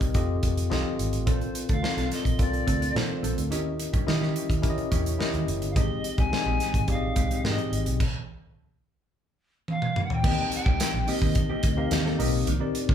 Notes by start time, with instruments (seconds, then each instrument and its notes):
Already playing: tine electric piano C4 D#4 G4 A#4 D5 D#5
0.01 fingered electric bass C2, kick, closed hi-hat
0.14 fingered electric bass F1, tine electric piano C4 F4 G4 A4 D#5, kick, closed hi-hat
0.43 fingered electric bass F1, kick, closed hi-hat
0.58 closed hi-hat
0.70 fingered electric bass C2, tine electric piano C4 F4 G4 A4 D#5, snare
0.99 fingered electric bass G#1, closed hi-hat
1.13 fingered electric bass A1, closed hi-hat
1.26 fingered electric bass A#1, tine electric piano C4 F4 A4 A#4 D5, clean electric guitar C4 D4 A4, pan flute C5, kick, closed hi-hat
1.41 muted clean electric guitar stroke, closed hi-hat
1.55 muted clean electric guitar stroke, closed hi-hat
1.69 fingered electric bass D2, clean electric guitar C4 D4 A4, pan flute F5, kick, closed hi-hat
1.82 tine electric piano C4 F4 A4 A#4 D5, muted clean electric guitar stroke, snare
1.97 fingered electric bass C2, clean electric guitar C4 D4 A4, snare, closed hi-hat
2.11 clean electric guitar C4 D4 A4, pan flute D#5, snare, closed hi-hat
2.25 fingered electric bass A#1, muted clean electric guitar stroke, kick, closed hi-hat
2.39 fingered electric bass C2, tine electric piano C4 F4 A4 A#4 D5, pan flute D5, muted clean electric guitar stroke, kick, closed hi-hat
2.53 muted clean electric guitar stroke, closed hi-hat
2.67 fingered electric bass D2, clean electric guitar C4 D4 A4, kick, closed hi-hat
2.80 clean electric guitar C4 D4 A4, closed hi-hat
2.95 fingered electric bass A#2, tine electric piano C4 F4 A4 A#4 D5, pan flute C5, snare
3.09 muted clean electric guitar stroke
3.23 fingered electric bass A#1, clean electric guitar C4 D4 A4, closed hi-hat
3.37 fingered electric bass D2, muted clean electric guitar stroke, closed hi-hat
3.50 fingered electric bass D#2, tine electric piano C#4 E4 G4 A#4 D#5, clean electric guitar C#4 E4 G4, closed hi-hat
3.65 muted clean electric guitar stroke
3.79 muted clean electric guitar stroke, closed hi-hat
3.93 fingered electric bass G2, clean electric guitar C#4 E4 G4, kick, closed hi-hat
4.06 fingered electric bass D#3, tine electric piano C#4 E4 G4 A#4 D#5, muted clean electric guitar stroke, snare
4.21 clean electric guitar C#4 E4 G4, snare
4.35 clean electric guitar C#4 E4 G4, closed hi-hat
4.49 fingered electric bass D#2, muted clean electric guitar stroke, kick, closed hi-hat
4.62 tine electric piano C#4 E4 G4 A#4 C#5, muted clean electric guitar stroke, kick, closed hi-hat
4.70 tine electric piano D#5
4.78 muted clean electric guitar stroke, closed hi-hat
4.91 fingered electric bass E2, clean electric guitar C#4 E4 G4, kick, closed hi-hat
5.06 clean electric guitar C#4 E4 G4, closed hi-hat
5.19 tine electric piano C#4 E4 G4 A#4 D#5, muted clean electric guitar stroke, snare
5.34 fingered electric bass D#2, muted clean electric guitar stroke, closed hi-hat
5.47 fingered electric bass F#1, closed hi-hat
5.62 fingered electric bass G1, muted clean electric guitar stroke, closed hi-hat
5.70 pan flute F5
5.75 fingered electric bass G#1, clean electric guitar G#3 C4 G4, tine electric piano C4 D#4 G4 G#4 D#5, pan flute D#5, kick, closed hi-hat
5.90 muted clean electric guitar stroke
6.04 muted clean electric guitar stroke, closed hi-hat
6.18 fingered electric bass C2, clean electric guitar G#3 C4 G4, pan flute G#5, kick, closed hi-hat
6.31 tine electric piano C4 D#4 G#4 D5, muted clean electric guitar stroke, snare
6.39 tine electric piano D#5
6.46 fingered electric bass A#1, clean electric guitar G#3 C4 G4
6.60 clean electric guitar G#3 C4 G4, snare, closed hi-hat
6.74 fingered electric bass G#1, muted clean electric guitar stroke, kick, closed hi-hat
6.88 fingered electric bass A#1, tine electric piano C4 D#4 G4 G#4 D5, pan flute F5, muted clean electric guitar stroke, kick, closed hi-hat
6.95 tine electric piano D#5
7.02 muted clean electric guitar stroke
7.16 fingered electric bass C2, clean electric guitar G#3 C4 G4, kick, closed hi-hat
7.30 clean electric guitar G#3 C4 G4, closed hi-hat
7.44 fingered electric bass G#2, tine electric piano C4 D#4 G4 G#4 C5, pan flute D#5, muted clean electric guitar stroke, snare
7.51 tine electric piano D#5
7.58 muted clean electric guitar stroke, closed hi-hat
7.72 fingered electric bass G#1, closed hi-hat
7.86 fingered electric bass B1, muted clean electric guitar stroke, closed hi-hat
8.00 kick, crash
9.68 pan flute F5, high tom
9.82 mid tom
9.96 mid tom
10.04 pan flute F#5
10.10 pan flute G5, floor tom
10.23 fingered electric bass D#2, clean electric guitar A#3 C4 G4, tine electric piano C4 D#4 G4 A#4 D#5, kick, crash
10.38 muted clean electric guitar stroke
10.52 pan flute G5, muted clean electric guitar stroke, closed hi-hat
10.66 fingered electric bass C2, clean electric guitar A#3 C4 G4, kick
10.80 snare, closed hi-hat
10.94 fingered electric bass A#1, muted clean electric guitar stroke
11.07 clean electric guitar A#3 C4 G4, tine electric piano C4 D#4 G4 A#4 D#5, pan flute D#5, open hi-hat
11.22 fingered electric bass D#2, clean electric guitar A#3 C4 G4, kick
11.35 muted clean electric guitar stroke, kick, closed hi-hat
11.50 clean electric guitar A#3 C4 G4
11.63 fingered electric bass D2, muted clean electric guitar stroke, kick, closed hi-hat
11.77 tine electric piano C4 D#4 G4 A#4 F5, muted clean electric guitar stroke
11.91 fingered electric bass D#2, muted clean electric guitar stroke, snare, closed hi-hat
12.06 clean electric guitar A#3 C4 A4, snare
12.18 fingered electric bass B1, clean electric guitar A#3 C4 G4, tine electric piano C4 D#4 G4 A#4 D#5, open hi-hat
12.34 muted clean electric guitar stroke
12.47 fingered electric bass C2, clean electric guitar D#3 A#3 D4, closed hi-hat
12.60 tine electric piano C4 D#4 G4 A#4 D5, muted clean electric guitar stroke
12.75 muted clean electric guitar stroke, closed hi-hat
12.89 fingered electric bass D2, clean electric guitar D#3 A#3 D4, kick